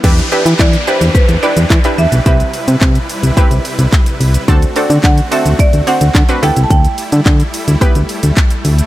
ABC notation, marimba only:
X:1
M:4/4
L:1/16
Q:1/4=108
K:Em
V:1 name="Marimba"
z2 B2 d2 c2 B2 d4 e2 | e12 z4 | z2 d2 f2 e2 d2 f4 g3/2 a/2 | g12 z4 |]